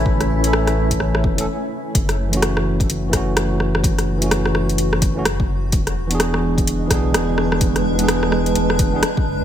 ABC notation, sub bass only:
X:1
M:4/4
L:1/16
Q:"Swing 16ths" 1/4=127
K:F#m
V:1 name="Sub bass" clef=bass
A,,,8 A,,,2 E,,,2 z4 | F,,,16 | F,,,16 | E,,,8- E,,,2 B,,,2 E,,,4 |
E,,,8 E,,,4 z2 F,,, z |]